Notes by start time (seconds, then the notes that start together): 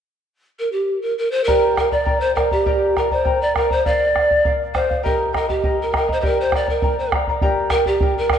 0.59 A#4
0.72 G4
1.02 A#4
1.18 A#4
1.31 C5
1.44 G4 A#4 D5 G5
1.48 A#5, bombo low
1.74 A#4 D5 G5 A#5, bombo rim, bombo low
1.92 A#4 D5 A#5, bombo low
2.05 A#4 D5 G5 A#5, bombo low
2.20 C5
2.35 A#4 D5 G5 A#5, bombo rim, bombo low
2.51 G4 A#4 D5 A#5, bombo low
2.66 G4 A#4 D5 G5 A#5, bombo low
2.96 A#4 D5 G5 A#5, bombo rim, bombo low
3.11 A#4 C5 D5 A#5, bombo low
3.25 A#4 D5 G5 A#5, bombo low
3.41 D5
3.56 A#4 D5 G5 A#5, bombo rim, bombo low
3.70 A#4 C5 D5 A#5, bombo low
3.85 A#4 D5 F5, bombo low
4.15 A#4 D5 F5, bombo rim, bombo low
4.30 D5 F5, bombo low
4.44 A#4 D5 F5, bombo low
4.74 A#4 C5 D5 F5, bombo rim, bombo low
4.90 D5 F5, bombo low
5.03 G4 A#4 D#5 G5 A#5, bombo low
5.33 A#4 D#5 G5 A#5, bombo rim, bombo low
5.47 G4 A#4 D#5 A#5, bombo low
5.63 A#4 D#5 G5 A#5, bombo low
5.82 A#4
5.92 A#4 D#5 G5 A#5, bombo rim, bombo low
5.96 A#4
6.08 A#4 D#5 A#5, bombo low
6.12 C5
6.20 G4 A#4 C5 D5 G5 A#5, bombo low
6.25 A#4
6.41 C5
6.51 A#4 D5 G5 A#5, bombo rim, bombo low
6.56 D5
6.67 A#4 D5 A#5, bombo low
6.82 A#4 D5 G5 A#5, bombo low
6.99 C5
7.12 A#4 D5 G5 A#5, bombo rim, bombo low
7.27 A#4 D5 A#5, bombo low
7.42 G4 A#4 D5 G5 A#5, bombo low
7.70 A#4 D5 G5 A#5, bombo rim, bombo low
7.86 G4 A#4 D5 A#5, bombo low
8.01 A#4 D5 G5 A#5, bombo low
8.18 A#4
8.30 A#4 D5 G5 A#5, bombo rim, bombo low